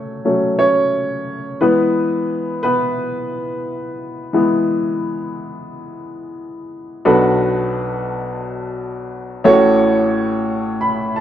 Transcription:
upright piano
Already playing: F#3 A3 C#4 C#5
0.25 F#3 A3 C#4
0.59 C#4 C#5
1.61 E3 G#3 B3 B4
2.63 B3 B4
4.33 E3 G#3 B3
7.05 B1 B2 D4 F#4 A4 B4
9.44 A1 A2 C#4 F#4 A4 C#5
10.81 B5
11.16 A5

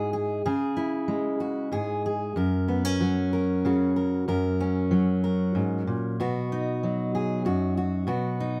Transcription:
steel-string acoustic guitar
Already playing: G#2 G#3 E4 G#4
0.13 G#4
0.46 C#3 G#4
0.77 E4
1.08 G#3
1.40 F#4
1.72 G#2 G#4
2.06 G#4
2.36 F#2 A#4
2.68 B3
2.85 C#4
3.01 F#3
3.33 A#4
3.65 C#3 F#4
3.96 A#4
4.28 F#2 A#4
4.61 C#4
4.91 F#3
5.24 A#4
5.55 G#2
5.87 A#2
6.20 B2 F#4
6.52 D#4
6.83 F#3
7.15 G#4
7.45 F#2 F#4
7.77 F#4
8.07 B2 F#4
8.40 D#4

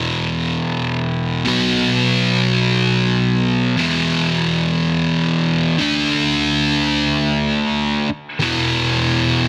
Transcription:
distorted electric guitar
Already playing: E2 B2 E3
1.45 B2 F#3 B3
3.77 E2 B2 E3
5.78 D3 A3 D4
8.39 E2 B2 E3

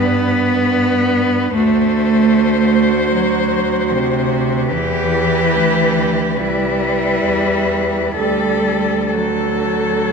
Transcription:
cello
Already playing: G2 B3 D4 B4
1.55 D2 A3 F#4 C5
3.15 F#3
3.93 C3
4.71 E2 E3 G4 B4
5.56 D2
6.37 C2 G3 E4 B4
7.25 E2
8.16 D2 G3 A4
9.11 F#3 A4

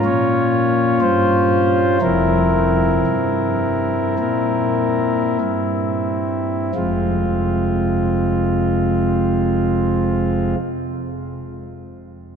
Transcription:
pipe organ
Already playing: C#4 F4
0.05 A#2 C#5
1.01 G2 C5
2.01 F1 F2 C4 E4 A#4
3.07 G2
4.19 A#2 A#4
5.40 G2
6.75 F1 F2 C3 G#3 C4 F4

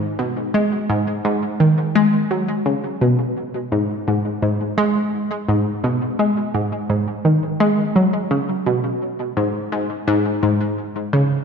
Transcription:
synth arpeggio sound
0.19 B2
0.54 G#3
0.89 G#2
1.25 G#2
1.60 D#3
1.95 G#3
2.31 F#3
2.66 C#3
3.01 B2
3.72 G#2
4.08 G#2
4.42 G#2
4.78 G#3
5.48 G#2
5.84 B2
6.19 G#3
6.54 G#2
6.90 G#2
7.25 D#3
7.60 G#3
7.96 F#3
8.31 C#3
8.66 B2
9.37 G#2
9.72 G#2
10.08 G#2
10.43 G#2
11.13 C#3

